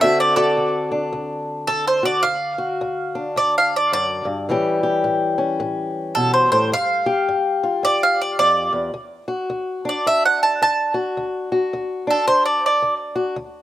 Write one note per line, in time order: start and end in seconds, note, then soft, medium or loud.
0.00 0.51 D2 medium
0.00 4.48 D3 medium
0.00 2.22 C4 medium
0.00 0.91 D4 medium
0.00 0.37 F#4 medium
0.00 0.18 E5 medium
0.20 0.35 D5 medium
0.36 2.02 F#4 medium
0.36 0.88 A4 medium
0.36 0.90 D5 medium
0.57 1.07 D2 medium
0.92 2.22 D4 medium
1.13 1.63 D2 medium
1.67 2.19 D2 medium
1.67 1.85 A4 medium
1.87 2.04 C5 medium
2.03 2.21 F#4 medium
2.03 2.23 D5 medium
2.23 2.75 D2 medium
2.23 3.31 F5 medium
2.58 4.45 F#4 medium
2.81 3.31 D2 medium
3.15 4.45 D4 medium
3.36 3.87 D2 medium
3.36 3.54 D5 medium
3.58 3.74 F5 medium
3.76 3.92 D5 medium
3.92 4.25 F#2 medium
3.92 4.25 D5 loud
4.25 4.47 G2 medium
4.49 4.99 A2 medium
4.49 6.69 E3 medium
4.49 8.95 G3 medium
4.49 5.37 C#4 medium
4.49 4.83 G4 medium
4.83 6.69 G4 medium
5.04 5.55 A2 medium
5.38 6.68 C#4 medium
5.60 6.11 A2 medium
6.15 6.49 B2 medium
6.15 6.33 A4 medium
6.34 6.51 C5 medium
6.52 6.72 A2 medium
6.52 6.70 C5 medium
6.72 7.23 G2 medium
6.72 7.80 F5 medium
7.06 8.92 G4 medium
7.29 7.79 G2 medium
7.63 8.93 F4 medium
7.83 8.34 G2 medium
7.83 8.01 D5 medium
8.03 8.20 F5 medium
8.22 8.38 D5 medium
8.39 8.72 F2 medium
8.39 8.71 D5 medium
8.73 8.93 E2 medium
8.94 9.45 D2 medium
9.28 10.94 F#4 medium
9.50 10.01 D2 medium
9.85 12.07 D4 medium
9.85 10.06 D5 medium
10.06 10.57 D2 medium
10.06 10.24 E5 medium
10.25 10.42 F#5 medium
10.43 10.60 A5 medium
10.62 11.12 D2 medium
10.62 10.94 A5 medium
10.94 11.52 F#4 medium
11.17 11.68 D2 medium
11.52 13.14 F#4 medium
11.73 12.23 D2 medium
12.07 13.36 D4 medium
12.07 12.27 A4 medium
12.27 12.78 D2 medium
12.27 12.45 C5 medium
12.46 12.63 D5 medium
12.66 12.94 D5 medium
12.82 13.33 D2 medium
13.16 13.35 F#4 medium
13.36 13.62 D2 medium